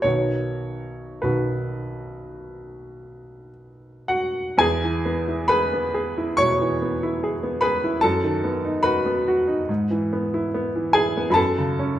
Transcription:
0.02 B1 D#3 B3 F#4 C#5
1.22 B1 D#3 B3 F#4 B4
4.08 F#4 F#5
4.57 E2 G#4 G#5
4.84 E3
5.05 B3
5.28 E4
5.48 G#4 B4 B5
5.73 B3
5.94 G#4
6.18 E4
6.37 B2 C#5 C#6
6.61 E3
6.82 B3
7.03 E4
7.24 G#4
7.43 B3
7.61 G#4 B4 B5
7.84 E4
8.01 F#2 A4 A5
8.24 D#3
8.44 B3
8.65 D#4
8.83 F#4 B4 B5
9.06 B3
9.28 F#4
9.47 D#4
9.69 G#2
9.91 E3
10.13 B3
10.34 E4
10.54 B3
10.75 E3
10.93 E4 G#4 G#5
11.17 B3
11.30 F#2 A5 B5
11.35 A4
11.58 C#3
11.79 C#4

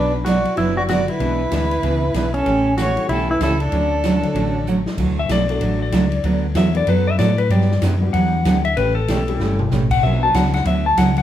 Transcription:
Already playing: B1 B2 F#3 B3 D4 F#4 B4
0.25 B2 F#3 B3 D4 F#4 D5, snare, hi-hat pedal, ride
0.45 ride
0.57 F#1 B2 F#3 B3 D4 E4 F#4 B4, ride
0.77 F#4 D5
0.88 B2 D3 F#3 B3 D4 F#4 D5, snare, hi-hat pedal, ride
1.08 E4 B4, ride
1.20 B1 B2 E3 G#3 B3 D4 G#4, ride
1.50 D2 B2 E3 G#3 B3 D4 G#4, snare, hi-hat pedal, ride
1.71 ride
1.83 C#2 B2 E3 B3 D4 G#4, ride
2.14 B1 B2 E3 B3 D4 G#4, snare, hi-hat pedal, ride
2.34 C#4 A4, ride
2.46 A1 C#3 E3 A3 C#4 G4, ride
2.78 C#3 E3 A3 C#4 F#4 G4 C#5, snare, hi-hat pedal, ride
2.95 E3 G3 A3 C#4, ride
3.09 B1 C#3 E3 A3 C#4 E4 G4 A4, ride
3.30 E4 B4
3.41 C#2 C#3 E3 A3 C#4 E4 G4 A4, snare, hi-hat pedal, ride
3.60 D4 A4, ride
3.72 D2 D3 F#3 A3 C#4 F#4, ride
4.04 D3 F#3 A3 C#4 F#4, snare, hi-hat pedal, ride
4.22 D3 F#3 A3 C#5, ride
4.34 A1 D3 F#3 A3 C#4 F#4, ride
4.67 D3 F#3 A3 C#4 F#4, hi-hat pedal
4.86 snare
4.98 D2 D3 F#3 A3 D4 F#4, kick, crash
5.19 E5
5.29 B1 D3 F#3 A3 D4 F#4 D5, snare, hi-hat pedal, ride
5.49 F#3 A3 D4 F#4 A4 D5, ride
5.60 A1 D3 F#3 A3 D4 F#4, ride
5.82 D5
5.92 C#2 D3 F#3 A3 D4 F#4, snare, hi-hat pedal, ride
6.12 ride
6.24 D2 D3 F#3 B3 F#4 A4, ride
6.55 E2 D3 F#3 B3 F#4 A4 E5, snare, hi-hat pedal, ride
6.74 A3 B3 D4 F#4 A4 D5, ride
6.87 F#2 D3 F#3 B3 F#4 A4 B4, ride
7.07 E5
7.19 A2 D3 F#3 B3 F#4 A4 D5, snare, hi-hat pedal, ride
7.38 B4, ride
7.49 G2 D3 F#3 B3 D4 G4 D5, ride
7.61 snare
7.71 snare
7.82 F#2 D3 F#3 B3 D4 G4, snare, hi-hat pedal, ride
8.01 G3 B3 D4 F#4 G4
8.13 E2 D3 F#3 B3 D4 G4 F#5, ride
8.45 D2 D3 F#3 B3 D4 G4, snare, hi-hat pedal, ride
8.65 E5, ride
8.77 A1 C#3 E3 A3 C#4 G4 B4, ride
8.95 A4
9.08 B1 C#3 E3 A3 C#4 G4, snare, hi-hat pedal, ride
9.27 G3 A3 C#4 E4 G4, ride
9.40 G1 C#3 E3 A3 C#4 G4, snare
9.59 mid tom
9.71 A1 C#3 E3 A3 C#4 G4, snare, hi-hat pedal
9.91 F#5, kick, crash
10.02 B1 B2 F3 F#3 A#3 B3 C#4 D4 F4 F#4 A#4 E5
10.21 F#3 B3 D4 F#4 B4 A5
10.34 C#2 B2 F#3 B3 D4 F#4 F#5, snare, hi-hat pedal, ride
10.45 snare
10.54 F#5, snare, ride
10.65 D2 B2 F#3 B3 D4 F#4 E5, ride
10.86 A5
10.97 C#2 B2 F#3 B3 D4 F#4 F#5, snare, hi-hat pedal, ride
11.17 F#5, ride

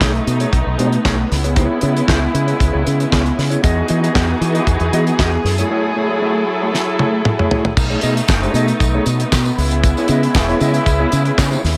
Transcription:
Already playing: A3 B3 D#4
0.01 B1 A3 D#4 G#4 C#5, kick, snare, clap
0.15 muted clean electric guitar stroke, closed hi-hat
0.27 B2, muted clean electric guitar stroke, closed hi-hat
0.40 A3 D#4 G#4 C#5, closed hi-hat
0.53 B1, kick, closed hi-hat
0.66 B1, muted clean electric guitar stroke
0.78 B2 A3 D#4 G#4 C#5, closed hi-hat
0.92 muted clean electric guitar stroke, closed hi-hat
1.04 B1 A3 D#4 G#4 C#5, kick, snare, clap
1.18 muted clean electric guitar stroke
1.30 C#2 C#3 G#3 E4, muted clean electric guitar stroke, snare, open hi-hat
1.44 B3 E4 G#4 C#5, closed hi-hat
1.56 B3 E4 G#4 C#5, kick, closed hi-hat
1.81 C#3 B3 E4 G#4 C#5, closed hi-hat
1.95 B3 E4 G#4 C#5, closed hi-hat
2.07 C#2 B3 E4 G#4 C#5, kick, snare, clap
2.21 muted clean electric guitar stroke
2.33 C#3, muted clean electric guitar stroke, closed hi-hat
2.47 B3 E4 G#4 C#5, closed hi-hat
2.59 C#2, muted clean electric guitar stroke, kick, closed hi-hat
2.73 C#2 B3 E4 G#4 C#5
2.85 C#3, muted clean electric guitar stroke, closed hi-hat
2.98 muted clean electric guitar stroke, closed hi-hat
3.10 C#2 B3 E4 G#4 C#5, kick, snare, clap
3.25 muted clean electric guitar stroke, closed hi-hat
3.36 C#3, muted clean electric guitar stroke, snare, open hi-hat
3.50 B3 E4 G#4 C#5, closed hi-hat
3.63 E2 E3 B3 D#4 F#4 G#4 D#5, kick, closed hi-hat
3.88 E3 B3 F#4 G#4 D#5, closed hi-hat
4.03 B3 F#4 G#4 D#5, closed hi-hat
4.14 E2 B3 F#4 G#4 D#5, kick, snare, clap
4.29 muted clean electric guitar stroke
4.41 E3, muted clean electric guitar stroke, closed hi-hat
4.54 B3 F#4 G#4 D#5, closed hi-hat
4.66 E2, muted clean electric guitar stroke, kick, closed hi-hat
4.80 E2, muted clean electric guitar stroke, closed hi-hat
4.92 E3 B3 F#4 G#4 D#5, closed hi-hat
5.07 muted clean electric guitar stroke, closed hi-hat
5.19 E2 B3 F#4 G#4 D#5, kick, snare, clap
5.33 muted clean electric guitar stroke
5.44 F#2 F#3 E4 A4, muted clean electric guitar stroke, snare, open hi-hat
5.58 A3 E4 G#4 C#5, closed hi-hat
5.70 A3 E4 G#4 C#5
5.96 A3 E4 G#4 C#5
6.10 A3 E4 G#4 C#5
6.21 A3 E4 G#4 C#5
6.35 muted clean electric guitar stroke
6.47 muted clean electric guitar stroke
6.62 A3 E4 G#4 C#5
6.74 muted clean electric guitar stroke, snare
6.87 muted clean electric guitar stroke
6.99 A3 E4 G#4 C#5, high tom
7.13 muted clean electric guitar stroke
7.25 muted clean electric guitar stroke, mid tom
7.39 A3 E4 G#4 C#5, mid tom
7.51 A3 E4 G#4 C#5, floor tom
7.65 muted clean electric guitar stroke, floor tom
7.77 B1 A3 B3 D#4, muted clean electric guitar stroke, kick, crash, tambourine
7.90 A3 D#4 G#4 C#5, tambourine
8.01 B2 A3 D#4 G#4 D#5, closed hi-hat, tambourine
8.17 muted clean electric guitar stroke, closed hi-hat, tambourine
8.28 F#1, muted clean electric guitar stroke, kick, snare, clap, tambourine
8.43 A3 D#4 G#4 C#5, closed hi-hat
8.53 B2 A3 D#4 G#4 D#5, closed hi-hat, tambourine
8.67 muted clean electric guitar stroke, closed hi-hat, tambourine
8.80 B1, muted clean electric guitar stroke, kick, closed hi-hat, tambourine
8.94 A3 D#4 G#4 C#5
9.06 B2, closed hi-hat, tambourine
9.20 muted clean electric guitar stroke, closed hi-hat
9.32 B2, muted clean electric guitar stroke, kick, snare, clap, tambourine
9.45 muted clean electric guitar stroke, tambourine
9.57 C#2 C#3 G#3 E4, open hi-hat
9.71 muted clean electric guitar stroke, closed hi-hat
9.83 muted clean electric guitar stroke, kick, closed hi-hat, tambourine
9.97 B3 E4 G#4 C#5, closed hi-hat, tambourine
10.08 C#3 B3 E4 G#4 D#5, closed hi-hat, tambourine
10.23 muted clean electric guitar stroke, closed hi-hat
10.34 E1, kick, snare, clap, tambourine
10.49 B3 E4 G#4 C#5, closed hi-hat
10.60 C#3 B3 E4 G#4 D#5, closed hi-hat, tambourine
10.74 muted clean electric guitar stroke, closed hi-hat, tambourine
10.86 C#2, muted clean electric guitar stroke, kick, closed hi-hat, tambourine
10.99 B3 E4 G#4 C#5
11.12 C#3, closed hi-hat, tambourine
11.25 muted clean electric guitar stroke, closed hi-hat
11.37 C#3, muted clean electric guitar stroke, kick, snare, clap, tambourine
11.51 B3 E4 G#4 C#5, closed hi-hat, tambourine
11.64 D#2, snare, open hi-hat

